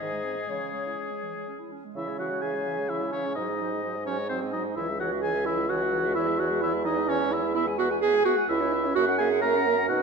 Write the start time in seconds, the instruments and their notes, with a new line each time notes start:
Already playing: oboe G#4
0.00 bassoon G#2, clarinet D#3, french horn G#3, flute D#5
0.12 clarinet G#3
0.24 clarinet C4
0.37 clarinet G#3
0.48 bassoon C#3, clarinet E3, flute C#5
0.61 clarinet G#3
0.74 clarinet C#4
0.86 clarinet E4
0.99 clarinet C#4
1.11 clarinet G#3
1.23 clarinet E3
1.35 clarinet G#3
1.48 clarinet C#4
1.60 clarinet E4
1.72 clarinet C#4
1.85 clarinet G#3
1.95 bassoon C#3, french horn E3, clarinet E4, flute E5, oboe E5
2.07 french horn G#3, flute C#5
2.18 french horn E3, clarinet F#4, flute E5, oboe F#5
2.31 french horn G#3, flute C#5
2.42 french horn E3, clarinet G#4, flute E5, oboe G#5
2.54 french horn G#3, flute C#5
2.66 french horn E3, flute E5
2.78 french horn G#3, flute C#5
2.89 french horn E3, clarinet E4, flute E5, oboe E5
3.01 french horn G#3, flute C#5
3.12 french horn E3, clarinet C#4, oboe C#5, flute E5
3.25 french horn G#3, flute C#5
3.35 bassoon G#2, french horn F#3, clarinet D#4, flute C5, oboe D#5
3.48 french horn G#3, flute D#5
3.59 french horn F#3, flute C5
3.71 french horn G#3, flute D#5
3.83 french horn F#3, flute C5
3.95 french horn G#3, flute D#5
4.06 french horn F#3, clarinet C#4, flute C5, oboe C#5
4.18 french horn G#3, flute D#5
4.29 french horn F#3, clarinet C4, oboe C5, flute C5
4.42 french horn G#3, flute D#5
4.53 french horn F#3, clarinet D#4, flute C5, oboe D#5
4.65 french horn G#3, flute D#5
4.76 bassoon C#2, french horn E3, clarinet E4, flute C#5, oboe E5
4.88 french horn G#3, flute E5
4.99 french horn E3, clarinet F#4, flute C#5, oboe F#5
5.11 french horn G#3, flute E5
5.22 french horn E3, clarinet G#4, flute C#5, oboe G#5
5.34 french horn G#3, flute E5
5.45 french horn E3, clarinet E4, flute C#5, oboe E5
5.57 french horn G#3, flute E5
5.68 french horn E3, clarinet F#4, flute C#5, oboe F#5
5.81 french horn G#3, flute E5
5.92 french horn E3, flute C#5
6.04 french horn G#3, flute E5
6.15 bassoon E2, french horn E3, clarinet E4, flute C#5, oboe E5
6.26 french horn G#3, flute E5
6.38 french horn E3, clarinet F#4, flute C#5, oboe F#5
6.49 french horn G#3, flute E5
6.62 french horn E3, clarinet E4, flute C#5, oboe E5
6.73 french horn G#3, flute E5
6.85 french horn E3, clarinet D#4, flute C#5, oboe D#5
6.97 french horn G#3, flute E5
7.08 french horn E3, clarinet C#4, flute C#5, oboe C#5
7.20 french horn G#3, flute E5
7.32 french horn E3, clarinet E4, flute C#5, oboe E5
7.44 french horn G#3, flute E5
7.54 french horn B3, clarinet E4, flute E5, oboe E5
7.67 french horn G#3, flute G#5
7.78 french horn B3, clarinet F#4, flute E5, oboe F#5
7.90 french horn G#3, flute G#5
8.01 french horn B3, clarinet G#4, flute E5, oboe G#5
8.14 french horn G#3, flute G#5
8.25 french horn B3, clarinet F#4, flute E5, oboe F#5
8.37 french horn G#3, flute G#5
8.48 bassoon C#2, clarinet E4, french horn E4, flute E5, oboe E5
8.60 french horn C#4, flute C#5
8.71 french horn E4, flute E5
8.84 french horn C#4, flute C#5
8.95 bassoon F#2, french horn A#3, clarinet F#4, flute E5, oboe F#5
9.08 french horn C#4, flute F#5
9.18 french horn A#3, clarinet G#4, flute E5, oboe G#5
9.31 french horn C#4, flute F#5
9.41 french horn A#3, clarinet A#4, flute E5, oboe A#5
9.55 french horn C#4, flute F#5
9.66 french horn A#3, flute E5
9.78 french horn C#4, flute F#5
9.88 bassoon B2, french horn D#4, clarinet F#4, flute D#5, oboe F#5